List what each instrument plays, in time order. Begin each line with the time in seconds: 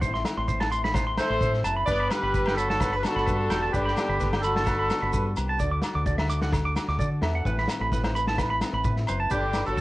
0.01 fingered electric bass A1, steel-string acoustic guitar E3 A3, clean electric guitar C5, muted steel-string acoustic guitar stroke, kick, shekere
0.06 steel-string acoustic guitar C4 E4
0.14 clean electric guitar C6, snare
0.25 steel-string acoustic guitar A3, snare, low agogo, shekere
0.37 fingered electric bass A1, clean electric guitar C6
0.48 steel-string acoustic guitar C4, clean electric guitar C5, kick, shekere
0.60 clean electric guitar A5, snare, low agogo
0.72 steel-string acoustic guitar E4, clean electric guitar C6, shekere
0.84 clean electric guitar B5, snare
0.94 steel-string acoustic guitar C4, clean electric guitar C5, kick, snare, low agogo, shekere
1.07 clean electric guitar C6
1.17 steel-string acoustic guitar A3, tenor saxophone A3, horn section A4 C5, snare, low agogo, shekere
1.30 fingered electric bass A1, clean electric guitar C6
1.41 fingered electric bass A2, steel-string acoustic guitar C4, clean electric guitar C5, kick, shekere
1.54 snare
1.64 fingered electric bass F#1, steel-string acoustic guitar E4, clean electric guitar A5, low agogo, shekere
1.76 clean electric guitar B5
1.86 fingered electric bass G1, steel-string acoustic guitar G2 D3 B3 D4, tenor saxophone B3, horn section B4 D5, clean electric guitar B4, kick, shekere
1.90 steel-string acoustic guitar G4
2.00 clean electric guitar B5
2.10 tenor saxophone G3, steel-string acoustic guitar B3, horn section G4 B4, snare, low agogo, shekere
2.23 fingered electric bass G1, clean electric guitar B5
2.34 steel-string acoustic guitar D4, clean electric guitar B4, kick, shekere
2.46 clean electric guitar G5, snare, low agogo
2.55 tenor saxophone F#3, horn section F#4 A4, clean electric guitar B5, shekere
2.70 clean electric guitar A5, snare
2.80 steel-string acoustic guitar B3, clean electric guitar B4, kick, snare, low agogo, shekere
2.93 steel-string acoustic guitar D4, horn section B4, clean electric guitar B5
2.99 tenor saxophone G3, horn section A4
3.03 tenor saxophone D3, steel-string acoustic guitar B3, horn section F#4, snare, low agogo, shekere
3.16 fingered electric bass G1, clean electric guitar B5, snare
3.26 fingered electric bass G2, steel-string acoustic guitar D4, clean electric guitar B4, kick, shekere
3.49 fingered electric bass E1, steel-string acoustic guitar G4, clean electric guitar G5, snare, low agogo, shekere
3.63 clean electric guitar A5
3.71 fingered electric bass G1, steel-string acoustic guitar G2, tenor saxophone D3, horn section G4, clean electric guitar B4, kick, shekere
3.75 horn section D4
3.86 clean electric guitar B5, snare
3.96 steel-string acoustic guitar B3, snare, low agogo, shekere
4.09 fingered electric bass G1, clean electric guitar B5
4.20 steel-string acoustic guitar D4, clean electric guitar B4, kick, snare, shekere
4.33 clean electric guitar G5, snare, low agogo
4.42 tenor saxophone D3, horn section F#4 A4, clean electric guitar B5, shekere
4.56 clean electric guitar A5, snare
4.66 clean electric guitar B4, muted steel-string acoustic guitar stroke, kick, snare, low agogo, shekere
4.79 clean electric guitar B5
4.90 steel-string acoustic guitar B3, snare, low agogo, shekere
5.02 fingered electric bass G1, clean electric guitar B5
5.13 fingered electric bass G2, steel-string acoustic guitar D4, clean electric guitar B4, kick, shekere
5.37 fingered electric bass C2, steel-string acoustic guitar G4, low agogo, shekere
5.49 clean electric guitar A5
5.60 fingered electric bass D2, steel-string acoustic guitar D3 D4 F#4 A4, clean electric guitar D5, kick, shekere
5.71 clean electric guitar D6
5.82 steel-string acoustic guitar F#4, snare, low agogo, shekere
5.95 fingered electric bass D2, clean electric guitar D6
6.06 steel-string acoustic guitar A4, clean electric guitar D5, kick, shekere
6.18 clean electric guitar E5, snare, low agogo
6.30 steel-string acoustic guitar A4, clean electric guitar D6, shekere
6.42 clean electric guitar F#5, snare
6.52 steel-string acoustic guitar A4, muted clean electric guitar stroke, kick, snare, low agogo, shekere
6.65 clean electric guitar D6
6.75 steel-string acoustic guitar F#4, snare, low agogo, shekere
6.88 fingered electric bass D2, clean electric guitar D6, snare
6.99 fingered electric bass D3, steel-string acoustic guitar A4, clean electric guitar D5, kick, shekere
7.22 fingered electric bass E2, steel-string acoustic guitar A4, clean electric guitar E5, snare, low agogo
7.35 clean electric guitar F#5
7.45 fingered electric bass A1, steel-string acoustic guitar A2 A3 C4 E4 B4, clean electric guitar B4, kick, shekere
7.58 clean electric guitar B5, snare
7.68 steel-string acoustic guitar C4, snare, low agogo, shekere
7.81 fingered electric bass A1, clean electric guitar B5
7.92 steel-string acoustic guitar E4, clean electric guitar B4, kick, snare, shekere
8.04 clean electric guitar C5, snare, low agogo
8.15 steel-string acoustic guitar B4, clean electric guitar B5, shekere
8.27 clean electric guitar A5, snare
8.38 steel-string acoustic guitar E4, clean electric guitar B4, kick, snare, low agogo, shekere
8.50 clean electric guitar B5
8.61 steel-string acoustic guitar C4, snare, low agogo, shekere
8.73 fingered electric bass A1, clean electric guitar B5
8.84 fingered electric bass A2, steel-string acoustic guitar E4, clean electric guitar B4, kick, shekere
8.96 snare
9.07 fingered electric bass F#1, steel-string acoustic guitar B4, clean electric guitar C5, low agogo, shekere
9.20 clean electric guitar A5
9.30 fingered electric bass G1, steel-string acoustic guitar G2, horn section D4 G4, clean electric guitar B4, kick, shekere
9.35 tenor saxophone D3
9.44 muted clean electric guitar stroke
9.53 steel-string acoustic guitar D4, clean electric guitar B4, snare, low agogo, shekere
9.66 fingered electric bass G1, horn section F#4 A4, shekere
9.71 tenor saxophone F#3
9.77 clean electric guitar A5, kick